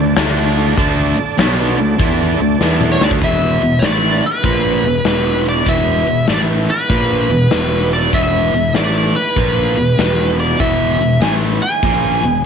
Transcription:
Already playing: D2 D3 A3 D4 A4 D5
0.16 D2 D3 A3 D4, snare, open hi-hat
0.77 D2 D3 A3 D4 A4 D5, kick, open hi-hat
1.18 muted distorted electric guitar stroke, muted fingered electric bass stroke
1.38 B1 B2 F#3 B3, snare, open hi-hat
1.78 D2 D3 A3
1.99 E2 E3 B3 E4, kick, open hi-hat
2.40 D2 D3 A3
2.60 E2 E3 B3 E4, snare
2.81 mid tom
2.92 C#5
3.01 D2 D3 A3 D4 D5, snare
3.11 kick
3.21 E1 E2 B2 E3 B3 E4 G#4 B4 E5, kick, closed hi-hat
3.62 E1 E2 B2, closed hi-hat
3.79 A1 A2 C#5, snare, closed hi-hat
3.84 E3 A3 D5
4.04 snare
4.23 B4, muted fingered electric bass stroke, muted distorted electric guitar stroke, closed hi-hat
4.44 A#1 A#2 F3 A#3, kick, closed hi-hat
4.84 E1 E2 B2, closed hi-hat
5.05 E1 E2 B2 E3, snare, closed hi-hat
5.45 D5, closed hi-hat
5.65 E1 E2 B2 E3 B3 E4 G#4 E5, kick, closed hi-hat
6.07 E1 E2 B2, closed hi-hat
6.27 A1 A2 E3 A3 D5, snare, closed hi-hat
6.68 B4, muted distorted electric guitar stroke, muted fingered electric bass stroke, closed hi-hat
6.90 A#1 A#2 F3 A#3, kick, closed hi-hat
7.30 E1 E2 B2, closed hi-hat
7.51 E1 E2 B2 E3, snare, closed hi-hat
7.92 D5, closed hi-hat
8.12 E1 E2 B2 E3 B3 E4 G#4 E5, kick, closed hi-hat
8.54 E1 E2 B2, closed hi-hat
8.74 A1 A2 E3 A3 D5, snare, closed hi-hat
9.15 B4, muted distorted electric guitar stroke, muted fingered electric bass stroke, closed hi-hat
9.36 A#1 A#2 F3 A#3, kick, closed hi-hat
9.77 E1 E2 B2, closed hi-hat
9.98 E1 E2 B2 E3, snare, closed hi-hat
10.39 D5, closed hi-hat
10.59 E1 E2 B2 E3 B3 E4 G#4 E5, kick, closed hi-hat
11.01 E1 E2 B2, closed hi-hat
11.21 A1 A2 E3 A3 G#5, snare, closed hi-hat
11.42 snare
11.62 G#5, muted fingered electric bass stroke, muted distorted electric guitar stroke, closed hi-hat
11.83 A#1 A#2 F3 A#3, kick, closed hi-hat
12.23 E1 E2 B2, closed hi-hat

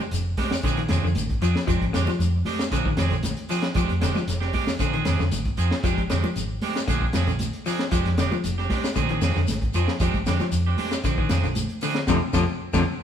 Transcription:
0.00 high conga, shekere
0.11 F1, closed hi-hat, shekere
0.37 G#3 C4 D4 G4, kick, snare, open hi-hat, high conga, shekere
0.51 snare, low conga, shekere
0.63 A#1 D3 F3 C4 D4 G#4, kick, closed hi-hat, shekere
0.77 D#3, closed hi-hat
0.88 F2 F3 C4 D4 G#4, snare, closed hi-hat, high conga, shekere
1.03 F2 D3, low conga, shekere
1.15 G#1, closed hi-hat, high conga, shekere
1.30 kick, closed hi-hat
1.41 F2 F3 C4 D4 G#4, closed hi-hat, shekere
1.55 muted fingered electric bass stroke, snare, shekere
1.67 F1 F3 G#3 C4 D4, muted clean electric guitar stroke, kick, closed hi-hat, low conga, shekere
1.81 G#1, kick, closed hi-hat
1.93 F2 D3 G#3 C4 D4 G4, snare, closed hi-hat, shekere
2.07 F3, snare, high conga, shekere
2.19 F2, closed hi-hat, high conga, shekere
2.45 G#3 C4 D4 G4, open hi-hat, high conga, shekere
2.59 snare, closed hi-hat, shekere
2.71 A#1 D3 F3 C4 D4 G#4, kick, closed hi-hat, shekere
2.85 D#3, kick
2.97 F2 C4 D4 G#4, muted clean electric guitar stroke, snare, closed hi-hat, high conga, shekere
3.10 A#1 D3, closed hi-hat, low conga, shekere
3.23 snare, closed hi-hat, high conga, shekere
3.37 closed hi-hat
3.49 F3 C4 D4 G#4, open hi-hat, shekere
3.62 snare, closed hi-hat, shekere
3.74 F1 F3 G#3 C4 D4 G4, kick, closed hi-hat, low conga, shekere
3.89 F2, closed hi-hat, high conga
4.01 F1 D3 G#3 C4 D4 G4, snare, closed hi-hat, shekere
4.15 F3, snare, high conga, shekere
4.27 F1, snare, closed hi-hat, shekere
4.40 C4 D4 G4, snare
4.53 G#3 C4 D4 G4, kick, open hi-hat, high conga, shekere
4.67 snare, low conga, shekere
4.79 A#1 D3 F3 C4 D4 G#4, kick, closed hi-hat, shekere
4.93 D#3 C4 D4 G#4, closed hi-hat
5.05 F2 F3 C4 D4 G#4, snare, closed hi-hat, high conga, shekere
5.19 F2 D3, snare, low conga, shekere
5.31 G#1, closed hi-hat, high conga, shekere
5.45 kick, closed hi-hat
5.57 F2 F3 C4 G#4, muted clean electric guitar stroke, closed hi-hat, shekere
5.71 snare, shekere
5.83 F1 F3 G#3 C4 D4 G4, kick, closed hi-hat, low conga, shekere
5.98 G#1, kick, closed hi-hat
6.10 F2 D3 G#3 C4 D4 G4, snare, closed hi-hat, shekere
6.24 F3, high conga, shekere
6.36 G#1, closed hi-hat, shekere
6.61 G#3 C4 D4 G4, open hi-hat, high conga, shekere
6.75 snare, closed hi-hat, shekere
6.88 A#1 D3 F3 C4 D4 G#4, kick, closed hi-hat, high conga, shekere
7.02 muted clean electric guitar stroke, kick
7.13 F2 F3 C4 D4 G#4, snare, closed hi-hat, high conga, shekere
7.27 A#1 D3, closed hi-hat, low conga, shekere
7.39 closed hi-hat, high conga, shekere
7.53 closed hi-hat
7.66 F3 C4 D4 G#4, open hi-hat, shekere
7.79 snare, closed hi-hat, shekere
7.91 F1 F3 G#3 C4 D4 G4, kick, closed hi-hat, low conga, shekere
8.05 F2, snare, closed hi-hat
8.17 F1 D3 G#3 C4 D4 G4, snare, closed hi-hat, shekere
8.32 F3, high conga, shekere
8.44 F1, closed hi-hat, high conga, shekere
8.58 C4 D4 G4, snare
8.70 G#3 C4 D4 G4, kick, snare, open hi-hat, high conga, shekere
8.84 snare, shekere
8.96 A#1 D3 F3 C4 D4 G#4, kick, closed hi-hat, high conga, shekere
9.09 D#3 C4 D4 G#4, closed hi-hat
9.21 F2 F3 C4 D4 G#4, snare, closed hi-hat, high conga, shekere
9.35 F2 D3, snare, low conga, shekere
9.48 G#1, snare, closed hi-hat, high conga, shekere
9.61 kick, closed hi-hat
9.74 F2 F3 C4 D4 G#4, closed hi-hat, shekere
9.88 snare, shekere
10.00 F1 F3 G#3 C4 D4 G4, kick, closed hi-hat, low conga, shekere
10.14 G#1, kick, closed hi-hat, high conga
10.26 F2 D3 G#3 C4 D4 G4, snare, closed hi-hat, shekere
10.40 F3, snare, high conga, shekere
10.52 F2, closed hi-hat, shekere
10.66 C4 D4 G4
10.78 G#3 C4 D4 G4, open hi-hat, high conga, shekere
10.91 snare, closed hi-hat, shekere
11.04 A#1 D3 F3 C4 D4, muted clean electric guitar stroke, kick, closed hi-hat, shekere
11.18 D#3 C4 D4 G#4, kick
11.29 F2 F3 C4 D4 G#4, snare, closed hi-hat, high conga, shekere
11.44 A#1 D3, closed hi-hat, low conga, shekere
11.55 closed hi-hat, high conga, shekere
11.69 closed hi-hat
11.81 D3 F3 C4 D4 G#4, open hi-hat, shekere
11.94 snare, closed hi-hat, shekere
12.07 F2 C3 D3 F3 C4 D4 F4, kick, snare, high conga, shekere
12.33 F2 C3 D3 F3 C4 D4 F4, kick, snare, high conga, shekere
12.73 F2 C3 D3 F3 C4 D4 F4, kick, snare, high conga, shekere

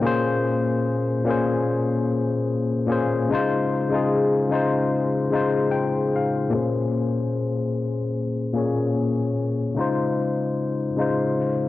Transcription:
0.01 A#2 A#3 C#4 G#4
0.07 C5
1.24 A#2 A#3 C#4
1.29 G#4 C5
2.86 A#2 A#3 C#4
2.91 G#4 C5
3.29 C#3 G#3 D#4
3.33 F4 C5
3.89 C#3 G#3 D#4
3.94 F4 G#4
4.49 C#3 G#3 D#4
4.53 F4 C5
5.30 C#3 G#3 D#4
5.35 F4 C5
5.71 G5
6.16 F5
6.50 A#2 A#3 C#4
6.54 G#4 C5
8.53 A#2 A#3 C#4 G#4
8.58 C#5
9.75 C#3 G#3 D#4
9.79 F4 C5
10.96 C#3 G#3 D#4 F4
11.01 C5

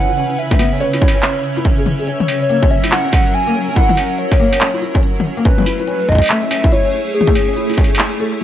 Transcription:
Already playing: C#3 C#4 B4 E5 F#5
0.09 E4, closed hi-hat
0.14 C#4, closed hi-hat
0.17 closed hi-hat
0.21 closed hi-hat
0.24 closed hi-hat
0.30 closed hi-hat
0.38 E5, closed hi-hat
0.51 kick, closed hi-hat, high tom, struck metal
0.59 B3, closed hi-hat, struck metal
0.62 closed hi-hat
0.66 closed hi-hat
0.69 closed hi-hat
0.72 C#4, closed hi-hat
0.74 closed hi-hat
0.76 closed hi-hat
0.78 closed hi-hat
0.80 C#5, closed hi-hat
0.93 E4, closed hi-hat, struck metal
1.01 E4, kick, closed hi-hat
1.08 struck metal
1.15 C#4, closed hi-hat
1.23 clap, closed hi-hat
1.36 closed hi-hat
1.44 closed hi-hat
1.57 E4, closed hi-hat
1.65 kick, closed hi-hat
1.78 G#4, closed hi-hat
1.86 closed hi-hat, high tom
1.99 G#4, closed hi-hat
2.07 F#3 C#4 C#5, closed hi-hat
2.20 closed hi-hat, high tom
2.28 closed hi-hat, struck metal
2.37 A#4
2.42 C#5, closed hi-hat
2.49 A#3, closed hi-hat
2.63 C#4, kick, closed hi-hat
2.71 C#4 E5, closed hi-hat
2.84 E4, closed hi-hat, struck metal
2.92 E4 F#5, clap, closed hi-hat
3.05 C#4, closed hi-hat
3.13 kick, closed hi-hat, struck metal
3.26 closed hi-hat
3.34 G#5, closed hi-hat
3.47 A#3, closed hi-hat
3.55 C#4
3.62 closed hi-hat
3.68 C#4, closed hi-hat
3.76 E4 F#5, kick, closed hi-hat
3.89 E4, closed hi-hat, high tom
3.97 C#4, closed hi-hat, struck metal
4.10 closed hi-hat
4.18 C#5, closed hi-hat
4.32 kick, closed hi-hat, struck metal
4.40 A#3, closed hi-hat
4.53 C#4, closed hi-hat, struck metal
4.61 C#4, clap, closed hi-hat
4.74 E4, closed hi-hat
4.82 E4, closed hi-hat
4.95 C#4, kick, closed hi-hat
5.03 closed hi-hat
5.16 closed hi-hat, high tom
5.24 closed hi-hat
5.37 A#3, closed hi-hat
5.45 A3 C#4 B4, kick, closed hi-hat
5.58 C#4, closed hi-hat, high tom
5.60 G#4, high tom
5.62 high tom
5.64 E4 C#5, closed hi-hat, high tom, struck metal
5.75 E4
5.79 E4 B4, closed hi-hat
5.87 C#4, closed hi-hat
6.01 closed hi-hat
6.09 D#5, kick, closed hi-hat
6.12 kick
6.15 kick
6.18 kick, closed hi-hat, struck metal
6.24 struck metal
6.26 struck metal
6.28 A3 E5, clap, closed hi-hat, struck metal
6.43 C#4, closed hi-hat
6.51 C#4, closed hi-hat, struck metal
6.64 E4, kick, closed hi-hat
6.72 E4 C#5, closed hi-hat
6.85 C#4, closed hi-hat
6.93 closed hi-hat
6.96 closed hi-hat
7.00 closed hi-hat
7.03 closed hi-hat
7.06 closed hi-hat
7.14 G#4, closed hi-hat
7.21 high tom
7.27 A3, kick
7.35 C#4, closed hi-hat, struck metal
7.48 C#4, closed hi-hat
7.56 E4, closed hi-hat
7.70 E4, closed hi-hat, struck metal
7.74 struck metal
7.78 C#4, kick, closed hi-hat, struck metal
7.84 struck metal
7.91 closed hi-hat, struck metal
7.96 clap, closed hi-hat
7.99 closed hi-hat
8.12 closed hi-hat
8.20 A4, closed hi-hat
8.33 closed hi-hat

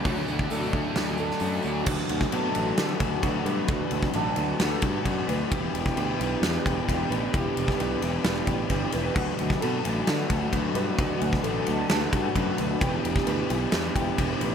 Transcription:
Already playing: B4 D5
0.04 D2 D3 F#3 A3 D4 F#4 C#5, kick, open hi-hat
0.17 tambourine
0.27 D2 F#3 A3 D4 F#4 C#5, tambourine
0.39 kick, tambourine
0.50 D2 D3 F#3 A3 D4 F#4 A4 C#5, open hi-hat, tambourine
0.63 tambourine
0.72 D2 A3 D4 F#4 C#5, kick
0.76 F#3
0.84 tambourine
0.94 D2 D3 F#3 A3 D4 F#4 C#5 D5, snare, open hi-hat
1.06 tambourine
1.18 F#3 A3 D4 F#4 A4 C#5, tambourine
1.30 snare, tambourine
1.39 F#2 D3 F#3 A3 D4 F#4 C#5, open hi-hat, tambourine
1.43 A3
1.62 D2 F#3 A3 D4 F#4 C#5, tambourine
1.75 tambourine
1.85 D2 D3 F#3 A3 D4 F#4 B4, kick, crash
2.07 D2 A3 D4 F#4, ride
2.21 kick, snare
2.30 B2 D3 F#3 A3 D4 F#4 B4, ride
2.34 A4
2.55 A1 A3 D4 F#4 B4, ride
2.77 D3 A3 D4 F#4 A4 B4, snare, ride
2.99 D2 A3 D4 F#4, kick, ride
3.22 D2 F#3 A3 D4 F#4 B4, kick, ride
3.45 G2 A3 D4 F#4 B4, ride
3.67 D2 D3 F#3 A3 D4 F#4 B4, kick, ride
3.91 D2 A3 D4 F#4, ride
4.03 kick, snare
4.13 A1 D3 F#3 A3 D4 F#4 A4 B4, ride
4.36 D2 A3 D4 F#4 B4, ride
4.58 D2 A3 D4 F#4 A4 B4, snare, ride
4.82 G2 A3 D4 F#4, kick, ride
5.04 F#2 F#3 A3 D4 F#4 B4, kick, ride
5.27 D2 A3 D4 F#4 B4, ride
5.50 E1 E3 B3 D4 E4 G4 B4, kick, ride
5.74 E1 B3 E4 G4, ride
5.86 kick, snare
5.96 D2 E3 B3 D4 E4 G4 B4, ride
6.19 B1 B3 D4 E4 G4 B4, ride
6.42 E2 B3 D4 G4 B4, snare, ride
6.47 B4
6.65 E1 B3 E4 G4, kick, ride
6.87 E1 E3 B3 D4 E4 G4 B4, kick, ride
7.10 A1 D4 G4 B4, ride
7.34 E1 E3 B3 D4 E4 G4 B4, kick, ride
7.56 E1 B3 E4 G4, ride
7.68 kick, snare
7.78 B1 E3 B3 D4 E4 G4 B4, ride
8.01 E1 D4 E4 G4 B4, ride
8.05 B3
8.22 E1 B3 D4 G4 B4, snare, ride
8.47 A1 B3 E4 G4, kick, ride
8.69 G1 E3 B3 D4 E4 G4 B4, kick, ride
8.91 E1 D4 G4 B4, ride
9.14 D2 D3 F#3 A3 D4 F#4 B4, kick, crash
9.37 D2 A3 D4 F#4, ride
9.50 kick, snare
9.60 D3 F#3 A3 D4 F#4 A4 B4, ride
9.64 B2
9.84 A1 A3 D4 F#4 B4, ride
10.07 D3 A3 D4 F#4 A4 B4, snare, ride
10.30 D2 A3 D4 F#4, kick, ride
10.52 D2 F#3 A3 D4 F#4 B4, kick, ride
10.75 G2 D4 F#4 B4, ride
10.79 A3
10.99 D2 D3 F#3 A3 D4 F#4 B4, kick, ride
11.21 D2 A3 D4 F#4, ride
11.33 kick, snare
11.43 A1 D3 F#3 A3 D4 F#4 A4, ride
11.47 B4
11.66 D2 A3 D4 F#4 B4, ride
11.88 D2 A3 A4, snare, ride
11.92 D4 F#4 B4
12.11 G2 A3 D4 F#4, kick, ride
12.35 F#2 F#3 A3 D4 F#4 B4, kick, ride
12.58 D2 A3 D4 F#4 B4, ride
12.80 E1 E3 B3 D4 E4 G4 B4, kick, ride
13.04 E1 B3 E4 G4, ride
13.16 kick, snare
13.26 D2 E3 B3 D4 E4 G4 B4, ride
13.49 B1 D4 E4 G4 B4, ride
13.53 B3
13.71 E2 B3 D4 G4 B4, snare, ride
13.95 E1 B3 E4 G4, kick, ride
14.17 E1 E3 B3 D4 E4 G4 B4, kick, ride
14.41 A1 D4 G4 B4, ride

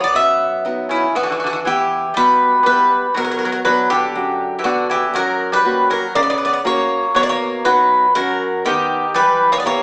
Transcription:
0.00 B3 D5
0.14 F#2 B3 E5
0.65 F#3 B3 D#4
0.89 C#3 E4
1.15 E3 B3 F#4
1.23 D3 F#4
1.30 D3 F#4
1.37 D3 F#4
1.44 D3 F#4
1.52 D3 F#4
1.65 E3 B3 E4 G4
2.14 B2 G3 B4
2.63 G3 B3 E4 G4 B4
3.14 B2 F#3 A#4
3.22 F#3 A#4
3.30 F#3 A#4
3.38 F#3 A#4
3.45 F#3 A#4
3.52 F#3 A#4
3.65 F#3 B3 D4 F#4 B4
3.90 D3 G4
4.15 F#2
4.59 E3 G4
4.64 D3 B3 D4 F#4
4.90 E3 G4
5.14 F#2 F#3 A#4
5.52 G3 B4
5.65 A#3 C#4 F#4
5.90 F#3 A#4
6.15 C#3 A#3 D5
6.23 B3 D5
6.30 B3 D5
6.38 B3 D5
6.45 B3 D5
6.53 B3 D5
6.64 A#3 C#4 F#4 C#5
7.15 B2 F#3 C#5
7.21 A#3 D5
7.29 A#3 C#5
7.65 F#3 B3 D#4 F#4 B4
8.15 F#2 F#3 A#4
8.65 D#3 B3 D#4 G4 F#5
9.14 E3 G3 B4
9.52 A#3 C#5
9.58 B3 D5
9.65 A#3 B3 E4 G4 C#5

